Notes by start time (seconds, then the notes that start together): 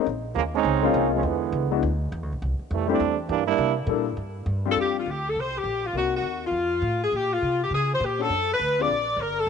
0.06 A#1
0.35 D#2 C#3 F3 G#3 A#3
0.55 G#3 C4 C#4 D#4
0.64 C#2
0.82 G#3 A#3 C4 C#4 F4
0.94 C2
1.15 C3 F3 G#3 C#4
1.23 E2 D3 E3 G#3 B3
1.52 C#2
1.71 G#3 B3 D4 E4 F#4
1.83 D2
2.12 E2
2.22 D2
2.33 B1
2.42 C2
2.59 muted upright bass stroke
2.71 F2 C3 E3 G3 A3
2.87 G3 A3 C4 D4 E4 G4
3.00 E2
3.29 G2 E3 G3 A#3 D4
3.46 G3 A#3 D4 E4
3.58 C3
3.87 A#2 G3 A#3 D4 E4 A4
4.17 G2
4.46 G2
4.65 G3 C4 D4 F4 G4
4.71 A4
4.80 G4
4.99 F4
5.06 D2 G4
5.28 A4
5.36 C2
5.40 C5
5.58 G4
5.64 A#1
5.86 F4
5.93 C2 A#3 C4 D#4 F#4
5.97 F#4
6.17 F#4
6.22 D#2
6.46 F4
6.51 F2
6.82 A2
7.04 G#4
7.12 A#2 G4
7.33 F4
7.42 C3
7.63 G4
7.70 C#3
7.75 G#4
7.94 C5
8.00 A#2
8.05 G4
8.19 C#4 D4 F#4 A4
8.29 F#2
8.53 B4
8.59 D2
8.79 C4 D4 F4 G#4 D5
8.88 A#1
9.16 G1
9.21 A#4
9.39 A4